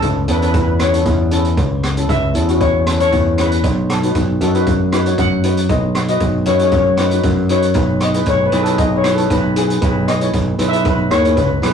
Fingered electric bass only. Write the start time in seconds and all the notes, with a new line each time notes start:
0.02 C#2
0.28 E2
1.06 E2
1.57 C#2
2.09 C#2
2.34 E2
3.12 E2
3.64 B1
4.15 B1
4.41 F#2
5.18 F#2
5.69 B1
6.21 B1
6.46 F#2
7.24 F#2
7.75 B1
8.26 B1
8.53 B1
9.30 B1
9.82 B1
10.34 B1
10.59 B1
11.11 D#2
11.37 C#2
11.62 B1